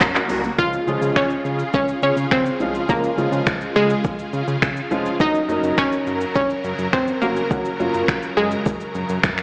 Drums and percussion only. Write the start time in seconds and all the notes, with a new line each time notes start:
0.01 kick, clap, closed hi-hat, shaker
0.15 clap, shaker
0.29 open hi-hat, shaker
0.44 shaker
0.58 kick, shaker
0.73 shaker
0.88 shaker
1.02 shaker
1.16 finger snap, kick, shaker
1.30 shaker
1.45 shaker
1.59 shaker
1.74 kick, shaker
1.88 shaker
2.03 shaker
2.17 shaker
2.31 finger snap, kick, shaker
2.46 shaker
2.60 shaker
2.75 shaker
2.89 kick, shaker
3.04 shaker
3.18 shaker
3.32 shaker
3.47 finger snap, kick, shaker
3.61 shaker
3.76 shaker
3.90 shaker
4.04 kick, shaker
4.19 shaker
4.33 shaker
4.48 shaker
4.62 finger snap, kick, shaker
4.77 shaker
4.91 shaker
5.06 shaker
5.20 kick, shaker
5.35 shaker
5.49 shaker
5.64 shaker
5.78 finger snap, kick, shaker
5.92 shaker
6.07 shaker
6.21 shaker
6.35 kick, shaker
6.50 shaker
6.64 shaker
6.79 shaker
6.93 finger snap, kick, shaker
7.08 shaker
7.22 shaker
7.36 shaker
7.51 kick, shaker
7.65 shaker
7.80 shaker
7.94 shaker
8.08 finger snap, kick, shaker
8.22 shaker
8.37 shaker
8.51 shaker
8.66 kick, shaker
8.81 shaker
8.95 shaker
9.09 shaker
9.23 finger snap, kick, shaker
9.38 finger snap, shaker